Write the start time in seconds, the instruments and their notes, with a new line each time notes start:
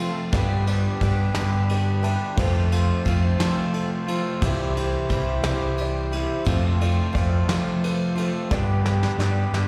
Already playing: clean electric guitar F2 C3 F4, fingered electric bass F3, accordion C4 F4 A4, grand piano F4 A4
0.00 clean electric guitar F3 A3 C4, twelve-string acoustic guitar C4 F4 A4, grand piano C5
0.31 clean electric guitar G2 D3 G3 B3 D4 G4, fingered electric bass G2, accordion D4 G4 B4, grand piano G4 B4 D5, kick, ride
0.35 twelve-string acoustic guitar B4
0.67 clean electric guitar G3 B3 D4 G4, grand piano G4 B4 D5, ride
1.00 fingered electric bass G2, clean electric guitar G3 B3 D4 G4, grand piano G4 B4 D5, kick, ride
1.05 twelve-string acoustic guitar B4
1.35 fingered electric bass G2, clean electric guitar D3 G3 B3 D4 G4, twelve-string acoustic guitar B4, snare, ride
1.39 clean electric guitar G2
1.69 grand piano G4 B4 D5 G5, ride
2.02 clean electric guitar G3 B3 D4 G4, grand piano G4 B4 E5 A5, twelve-string acoustic guitar B4, ride
2.36 clean electric guitar F2 C3 F3 A3 C4, fingered electric bass F2, grand piano F4 A4 C5, accordion F4 A4 C5, twelve-string acoustic guitar A4, kick, crash
2.40 clean electric guitar F4
2.72 clean electric guitar F3 A3 C4 F4, grand piano F4 A4 C5, ride
3.05 fingered electric bass F2, clean electric guitar F3 A3 C4 F4, grand piano F4 A4 C5, kick, ride
3.09 twelve-string acoustic guitar A4
3.38 clean electric guitar F2 C3 F3 A3 C4 F4, fingered electric bass F3, twelve-string acoustic guitar A4, snare, ride
3.73 grand piano F4 A4 C5, ride
4.07 clean electric guitar F3 A3 C4 F4, grand piano F4 A4 C5, twelve-string acoustic guitar A4, ride
4.41 fingered electric bass C2, clean electric guitar C3 E3 G3 C4 E4, grand piano E4 G4 C5, accordion E4 G4 C5, twelve-string acoustic guitar G4, kick, ride
4.75 clean electric guitar G3 C4 E4, grand piano E4 G4 C5, ride
5.09 fingered electric bass C2, clean electric guitar E3 G3 C4 E4, grand piano E4 G4 C5, twelve-string acoustic guitar G4, kick, ride
5.43 fingered electric bass C2, clean electric guitar C3 E3 G3 C4 E4, twelve-string acoustic guitar G4, snare, ride
5.78 grand piano E4 G4 D5, ride
6.11 clean electric guitar G3 C4 E4, grand piano E4 G4 C5, twelve-string acoustic guitar G4, ride
6.45 clean electric guitar F2 C3 F3 A3 C4 F4, fingered electric bass F2, grand piano F4 A4 C5, accordion F4 A4 C5, twelve-string acoustic guitar A4, kick, ride
6.80 clean electric guitar F3 A3 C4 F4, grand piano F4 A4 D5, ride
7.13 fingered electric bass F2, clean electric guitar F3 A3 C4 F4, grand piano F4 A4 D5, twelve-string acoustic guitar A4, kick, ride
7.48 clean electric guitar F2 C3 F3 A3 C4 F4, fingered electric bass F3, twelve-string acoustic guitar A4, snare, ride
7.83 grand piano F4 A4 B4, ride
8.16 clean electric guitar F3 A3 C4 F4, grand piano F4 A4 C5, twelve-string acoustic guitar A4, ride
8.50 clean electric guitar G2 D3 G3 B3 D4 G4, fingered electric bass G2, accordion D4 G4 B4, grand piano G4 B4 D5, kick, snare
8.84 clean electric guitar G3 B3 D4 G4, grand piano G4 B4 F5, snare
9.03 snare
9.18 fingered electric bass G2, clean electric guitar G3 B3 D4 G4, grand piano G4 B4 D5, snare
9.52 fingered electric bass G2, clean electric guitar D3 G3 B3 D4 G4, snare
9.56 clean electric guitar G2